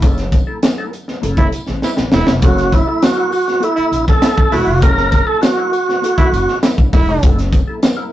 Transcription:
0.02 F#1 A#3 E4 A4, kick, closed hi-hat, tambourine
0.18 snare, closed hi-hat
0.32 muted clean electric guitar stroke, kick, closed hi-hat, tambourine
0.47 A#3 E4 A4
0.63 muted clean electric guitar stroke, snare, closed hi-hat, tambourine
0.78 A#3 E4 A#4
0.92 muted clean electric guitar stroke, closed hi-hat, tambourine
1.08 muted clean electric guitar stroke, snare
1.22 F#1 A#3 E4 A4, closed hi-hat, tambourine
1.37 E4, kick, closed hi-hat
1.52 muted clean electric guitar stroke, closed hi-hat, tambourine
1.67 A1, muted clean electric guitar stroke, snare
1.82 E4, muted clean electric guitar stroke, snare, tambourine
1.96 A#1, muted clean electric guitar stroke, snare
2.11 E1 A#3 E4 A4, snare, tambourine
2.27 F1, muted clean electric guitar stroke, snare
2.42 F#1 A#3 E4 F#4 A4, kick, closed hi-hat, tambourine
2.58 snare, closed hi-hat
2.72 E4, muted clean electric guitar stroke, kick, closed hi-hat, tambourine
2.87 A#3 E4 A4
3.02 F#4, snare, closed hi-hat, tambourine
3.16 A#3 E4 A#4
3.32 F#4, muted clean electric guitar stroke, open hi-hat, tambourine
3.46 muted clean electric guitar stroke, snare
3.60 A#3 E4 A4, closed hi-hat
3.76 E4, muted upright bass stroke, closed hi-hat
3.92 A#1, muted clean electric guitar stroke, closed hi-hat, tambourine
4.06 A4, muted clean electric guitar stroke, kick, snare
4.22 E4, muted clean electric guitar stroke, snare, closed hi-hat, tambourine
4.37 A1, muted clean electric guitar stroke, kick
4.52 E1 A#3 E4 F#4 A4, snare, open hi-hat
4.67 F1, muted clean electric guitar stroke
4.81 F#1 A#3 E4 A4 A#4, kick, closed hi-hat, tambourine
4.97 snare
5.11 A#4, muted clean electric guitar stroke, kick, closed hi-hat, tambourine
5.27 A#3 E4 A4
5.42 F#4, muted clean electric guitar stroke, snare, closed hi-hat, tambourine
5.57 A#3 E4 A#4
5.73 muted clean electric guitar stroke, closed hi-hat, tambourine
5.88 muted clean electric guitar stroke, snare
6.02 A#3 E4 A4, closed hi-hat, tambourine
6.18 E4, muted upright bass stroke, kick, closed hi-hat
6.32 F#1, muted clean electric guitar stroke, closed hi-hat, tambourine
6.48 muted clean electric guitar stroke, snare
6.62 E4, muted clean electric guitar stroke, snare, closed hi-hat, tambourine
6.78 A#1, muted clean electric guitar stroke, kick
6.93 E1 A#3 E4 A4, kick, snare, open hi-hat, tambourine
7.07 F1, muted clean electric guitar stroke
7.22 F#1 A#3 E4 A4, kick, closed hi-hat, tambourine
7.39 snare, closed hi-hat
7.52 muted clean electric guitar stroke, kick, closed hi-hat, tambourine
7.67 A#3 E4 A4
7.81 muted clean electric guitar stroke, snare, closed hi-hat, tambourine
7.97 A#3 E4 A#4

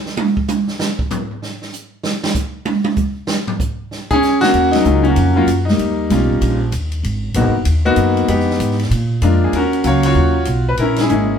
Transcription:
0.06 snare
0.17 high tom
0.37 kick
0.48 hi-hat pedal, high tom
0.68 snare
0.79 snare
0.99 kick
1.10 floor tom, hi-hat pedal
1.31 floor tom
1.42 snare
1.62 snare
1.73 hi-hat pedal
2.03 snare
2.24 snare
2.35 kick, hi-hat pedal
2.65 high tom
2.84 high tom
2.96 kick, hi-hat pedal
3.27 snare
3.47 floor tom
3.60 kick, hi-hat pedal
3.91 snare
4.11 C#4 G#4, kick
4.22 snare, hi-hat pedal
4.41 A#3 C#4 F#4, snare
4.54 D#2, kick, ride
4.71 A#3 D#4, snare, ride
4.76 F#3
4.84 C#2 F#3 A#3 C#4 F4, hi-hat pedal
5.03 C#4, ride
5.08 A#3 F#4
5.16 F2, kick, ride
5.36 F#3 A#3 C#4 F4
5.47 F#2, kick, hi-hat pedal, ride
5.65 D#4, snare
5.70 G3 A#3
5.79 D#2, kick, ride
6.10 B1 G3 A#3 C#4 F4, kick, snare, hi-hat pedal, ride
6.30 kick
6.41 A#1, kick, ride
6.72 D#2, kick, hi-hat pedal, ride
6.92 ride
7.03 G#1, kick, ride
7.34 A#1 A#3 B3 D#4 F#4, kick, hi-hat pedal, ride
7.44 G#1
7.56 F#1
7.65 D#2, kick, ride
7.85 A#3 B3 D#4 F#4
7.96 F#2, kick, hi-hat pedal, ride
8.17 ride
8.28 F2 G#3 B3 D#4 G4, kick, ride
8.39 snare
8.50 snare
8.60 G#2, kick, hi-hat pedal, ride
8.71 snare
8.79 snare, ride
8.91 A#2, kick, ride
9.22 F2 G#3 A#3 D4 F4, kick, hi-hat pedal, ride
9.44 G#4
9.53 D#2 C#4 F#4 A#4, kick, ride
9.73 ride
9.84 C#2 F#3 A#3 C#4 C#5 F5, kick, hi-hat pedal, ride
10.03 F4 F#4 C#5, ride
10.15 D#2, kick
10.45 B1, kick, hi-hat pedal, ride
10.69 B4
10.77 A#1 C#4 E4 A#4, kick, ride
10.96 snare, ride
11.01 C#4 E4 G#4
11.09 G#1 G#3 A#3 C#4 E4, hi-hat pedal

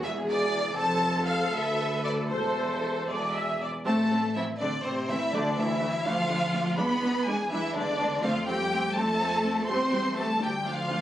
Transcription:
0.01 E1 E2 G#4 E5
0.28 D5
0.75 F1 F2 A4 C5 A5
1.26 F5
1.50 D2 B4 E5
2.03 D5
2.30 E1 E2 A4 C5
2.69 A4
3.09 E1 E2 G#4 D5
3.35 E5
3.62 D5
3.86 A1 A3 C4 A4 A5
4.11 A3 C4
4.35 E3 A3 C4 E4 E5
4.59 A1 D3 A3 C4 D4 D5
4.85 C3 A3 C4 C5
5.09 E3 A3 C4 E4 E5
5.32 D2 D3 A3 D4 D5
5.57 E3 A3 D4 E4 E5
5.81 A3 D4
6.03 D2 F3 A3 D4 F5
6.07 F4
6.29 A3 D4
6.53 A3 D4
6.77 E2 G#3 B3 D4 B4 B5
7.03 G#3 D4
7.25 G#3 D4 G#4 G#5
7.50 E2 E3 G#3 D4 E4 E5
7.75 D3 G#3 D4 D5
7.99 G#3 D4
8.23 F2 F3 A3 C4 F4 F5
8.47 G3 A3 C4 G4 G5
8.73 A3 C4
8.94 F2 A3 C4 A4 A5
9.20 A3 C4
9.44 A3 C4
9.68 E2 G3 C4 C5 C6
9.92 G3 C4
10.16 G3 A3 C4 A4 A5
10.39 D2 G3 A3 D4 G4 G5
10.64 F3 A3 D4 F4 F5
10.89 A3 D4

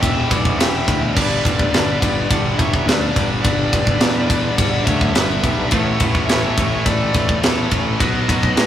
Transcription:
Already playing: E2 B2 E3
0.01 E1 E2 B2 E3 G3 E5 G5, kick, ride
0.09 E3 G3
0.17 E3 G3
0.24 E3 G3
0.30 B1 E2 B2 E3 G3 D5 F#5, kick, ride
0.39 E3 G3
0.45 E3 G3, kick
0.55 E2 E3 G3 E5
0.59 E1 B2 E3 G5, snare, ride
0.63 G3
0.69 E3 G3
0.77 E3 G3
0.85 D2 E2 B2 E3 G3, kick, ride
0.93 E3 G3
1.00 E3 G3
1.08 E3 G3
1.15 G1 G2 D3 G3 B4 D5, kick, crash
1.24 G2 D3
1.32 G2 D3
1.40 G2 D3
1.45 G1 G2 D3 G3, kick, ride
1.54 G2 D3
1.59 G2 D3, kick
1.69 G1 G2 D3 G3
1.74 G2 D3, snare, ride
1.84 G2 D3
1.92 G2 D3
2.00 G1 G2 D3 G3, kick, ride
2.07 G2 D3
2.14 G2 D3
2.23 G2 D3
2.29 G1 G2 D3 G3 D5 F#5, kick, ride
2.37 G2 D3
2.46 G2 D3
2.53 G2 D3
2.58 G1 G2 D3 G3 C#5 E5, kick, ride
2.69 G2 D3
2.74 G2 D3, kick
2.83 D2 G2 D3 G3 B4
2.87 G2 D5, snare, ride
2.93 D3
2.99 G2 D3
3.05 G2 D3
3.14 G1 G2 D3 G3, kick, ride
3.21 G2 D3
3.29 G2 D3
3.37 G2 D3
3.42 G1 G2 G3 B4 D5, kick, ride
3.46 D3
3.53 G2 D3
3.60 G2 D3
3.68 G2 D3
3.73 G1 G2 G3, kick, ride
3.77 D3
3.84 G2 D3, kick
3.90 G2 D3
3.98 E2 G2 D3 G3, snare, ride
4.06 G2 D3
4.14 G2 D3
4.21 G2 D3
4.29 G2 D3 G3, kick, ride
4.36 G2 D3
4.43 G2 D3
4.51 G2 D3
4.57 G1 G2 D3 G3 D5 F#5, kick, ride
4.67 G2 D3
4.74 G2 D3
4.81 G2 D3 E5
4.86 D2 G2 D3 G3 C#5, kick, ride
4.96 G2 D3
5.01 G2 D3, kick
5.13 G1 G2 D3 G3 B4 E5, snare, ride
5.20 G2 D3
5.27 G2 D3
5.35 G2 D3
5.42 B1 G2 D3 G3, kick, ride
5.49 G2 D3
5.57 G2 D3
5.65 G2 D3 F#5
5.71 A1 A2 E3 A3 C#5, kick, ride
5.80 A2 E3
5.87 A2 E3
5.94 A2 E3
6.00 A1 A2 E3 A3, kick, ride
6.10 A2 E3
6.15 A2 E3, kick
6.24 A2 E3 E5
6.29 A1 A3 C#5, snare, ride
6.33 A2 E3
6.40 A2 E3
6.48 A2 E3
6.55 A1 A2 E3, kick, ride
6.60 A2 E3 A3
6.70 A2 E3
6.79 A2 E3
6.85 A1 A2 E3 A4 D5, kick, ride
6.89 A3
6.93 A2 E3
7.00 A2 E3
7.08 A2 E3
7.14 A1 A2 E3 A3, kick, ride
7.24 A2 E3
7.29 A2 E3, kick
7.39 E2 A2 E3 C#5
7.43 A2 E3 A3 A4, snare, ride
7.54 A2 E3
7.61 A2 E3
7.70 A1 A2 E3 A3, kick, ride
7.78 A2 E3
7.84 A2 E3
7.93 A2 E3
7.99 B1 B2 F#3 B3 B4 D#5, kick, ride
8.09 B2 F#3
8.17 B2 F#3
8.25 B1 B2 F#3
8.29 B2 F#3 B3, kick, ride
8.40 B2 F#3, kick
8.47 B2 F#3
8.54 A2 B2 F#3 B3, snare, ride
8.62 B2 F#3

